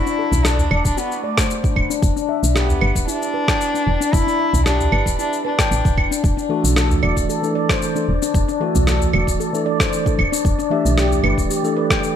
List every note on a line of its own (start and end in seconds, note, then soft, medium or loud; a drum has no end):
0.00 0.46 E4 loud
0.06 0.17 D4 medium
0.06 shaker soft
0.19 0.44 A4 medium
0.32 0.66 B1 medium
0.32 udu medium
0.32 shaker medium
0.45 0.85 D4 medium
0.45 0.70 A4 medium
0.45 cross-stick medium
0.45 shaker medium
0.58 udu medium
0.58 shaker soft
0.71 0.82 E1 medium
0.71 0.96 D5 medium
0.71 claves medium
0.85 0.95 D1 medium
0.85 0.99 D4 medium
0.85 kick medium
0.85 shaker medium
0.97 1.23 B3 medium
0.97 1.11 F#4 medium
0.97 shaker medium
1.12 shaker soft
1.24 1.73 A3 medium
1.24 1.37 D5 medium
1.37 1.49 C5 medium
1.37 kick loud
1.37 cross-stick medium
1.37 shaker medium
1.50 shaker medium
1.64 1.76 D4 medium
1.64 kick loud
1.64 shaker soft
1.76 1.87 E1 medium
1.76 kick medium
1.76 claves medium
1.90 1.97 D4 loud
1.90 shaker medium
2.02 2.13 E1 loud
2.02 kick loud
2.02 shaker medium
2.16 2.28 D4 loud
2.16 shaker soft
2.29 2.54 E5 medium
2.43 2.77 B1 medium
2.43 shaker medium
2.55 3.04 B3 medium
2.55 2.80 G4 medium
2.55 cross-stick medium
2.55 shaker medium
2.69 udu medium
2.69 shaker soft
2.81 2.92 G1 medium
2.81 3.07 B4 medium
2.81 claves medium
2.95 3.05 D1 medium
2.95 kick medium
2.95 shaker medium
3.08 4.15 D4 loud
3.08 3.21 E4 medium
3.08 shaker medium
3.22 shaker soft
3.34 3.47 B4 medium
3.48 3.60 G5 medium
3.48 kick loud
3.48 cross-stick medium
3.48 shaker medium
3.61 shaker medium
3.74 3.86 D4 medium
3.74 shaker soft
3.87 3.98 E1 medium
4.01 4.08 D4 medium
4.01 shaker medium
4.13 4.24 E1 loud
4.13 4.66 E4 loud
4.13 kick loud
4.13 shaker medium
4.27 4.38 D4 medium
4.27 shaker soft
4.39 4.65 E5 medium
4.53 4.87 B1 medium
4.53 udu medium
4.53 shaker medium
4.66 5.15 D4 loud
4.66 4.91 G4 medium
4.66 cross-stick medium
4.66 shaker medium
4.80 udu medium
4.80 shaker soft
4.92 5.03 G1 medium
4.92 5.17 B4 medium
4.92 claves medium
5.06 5.16 D1 medium
5.06 kick medium
5.06 shaker medium
5.19 5.43 D4 loud
5.19 5.32 E4 medium
5.19 shaker medium
5.33 shaker soft
5.45 6.20 D4 medium
5.45 5.58 B4 medium
5.59 5.70 G5 medium
5.59 kick loud
5.59 cross-stick medium
5.59 shaker medium
5.71 5.82 A1 medium
5.71 shaker medium
5.85 5.99 D1 loud
5.85 5.97 D4 medium
5.85 kick loud
5.85 shaker soft
5.97 6.08 E1 medium
5.97 kick medium
5.97 claves medium
6.11 6.18 D4 medium
6.11 shaker medium
6.24 6.34 E1 medium
6.24 12.16 D5 medium
6.24 kick loud
6.24 shaker medium
6.37 6.49 D4 medium
6.37 shaker soft
6.49 6.99 E3 loud
6.49 7.00 A3 medium
6.49 7.00 D4 medium
6.49 7.00 F#4 loud
6.49 6.75 A4 medium
6.64 6.98 B1 medium
6.64 shaker medium
6.76 7.02 A4 medium
6.76 cross-stick medium
6.76 shaker soft
6.91 udu medium
6.91 shaker soft
7.01 7.14 E1 medium
7.01 7.39 E3 medium
7.01 7.39 A3 medium
7.01 7.40 D4 medium
7.01 7.40 F#4 medium
7.01 7.28 D5 medium
7.01 claves medium
7.17 7.26 D1 medium
7.17 kick medium
7.17 shaker medium
7.29 7.54 A4 medium
7.29 shaker medium
7.42 7.92 E3 medium
7.42 7.92 A3 medium
7.42 7.92 D4 medium
7.42 7.93 A4 loud
7.42 shaker soft
7.55 7.69 D5 medium
7.69 7.81 C5 medium
7.69 kick loud
7.69 cross-stick medium
7.69 shaker medium
7.82 shaker medium
7.95 8.09 E3 medium
7.95 8.09 A3 medium
7.95 8.07 D4 medium
7.95 8.10 D4 medium
7.95 8.10 A4 medium
7.95 shaker soft
8.08 8.19 E1 medium
8.22 8.29 D4 loud
8.22 shaker medium
8.34 8.45 E1 medium
8.34 kick loud
8.34 shaker medium
8.48 8.59 D4 loud
8.48 shaker soft
8.60 9.10 E3 loud
8.60 9.10 A3 medium
8.60 9.11 D4 medium
8.60 9.11 F#4 loud
8.60 8.86 A4 medium
8.75 9.09 B1 medium
8.75 udu medium
8.75 shaker medium
8.87 9.12 A4 medium
8.87 cross-stick medium
8.87 shaker medium
9.01 udu medium
9.01 shaker soft
9.12 9.24 E1 medium
9.12 9.50 E3 medium
9.12 9.50 A3 medium
9.12 9.51 D4 medium
9.12 9.51 F#4 medium
9.12 9.39 D5 medium
9.12 claves medium
9.27 9.37 D1 medium
9.27 kick medium
9.27 shaker medium
9.40 9.65 A4 medium
9.40 shaker medium
9.53 10.02 E3 loud
9.53 10.03 A3 medium
9.53 10.03 D4 medium
9.53 10.03 A4 loud
9.53 shaker soft
9.66 9.79 D5 medium
9.80 9.92 C5 medium
9.80 kick loud
9.80 cross-stick medium
9.80 shaker medium
9.93 shaker medium
10.05 10.20 E3 medium
10.05 10.20 A3 medium
10.05 10.18 D4 medium
10.05 10.20 D4 medium
10.05 10.20 A4 medium
10.05 kick medium
10.05 shaker soft
10.19 10.29 E1 medium
10.19 kick medium
10.19 claves medium
10.32 10.39 D4 loud
10.32 shaker medium
10.45 10.55 E1 medium
10.45 kick loud
10.45 shaker medium
10.59 10.70 D4 loud
10.59 shaker soft
10.70 11.20 E3 medium
10.70 11.21 A3 medium
10.70 11.21 D4 medium
10.70 11.21 G4 loud
10.70 10.96 E5 medium
10.85 11.19 B1 medium
10.85 shaker medium
10.97 11.23 G4 medium
10.97 cross-stick medium
10.97 shaker medium
11.12 udu medium
11.12 shaker soft
11.22 11.34 G1 medium
11.22 11.60 E3 medium
11.22 11.60 A3 medium
11.22 11.61 D4 medium
11.22 11.61 G4 medium
11.22 11.49 B4 medium
11.22 claves medium
11.38 11.47 D1 medium
11.38 kick medium
11.38 shaker medium
11.50 11.75 G4 medium
11.50 shaker medium
11.63 12.13 E3 medium
11.63 12.13 A3 medium
11.63 12.14 D4 medium
11.63 12.14 A4 loud
11.63 shaker soft
11.77 11.90 B4 medium
11.90 12.02 G5 medium
11.90 kick medium
11.90 cross-stick medium
11.90 shaker medium
12.03 shaker medium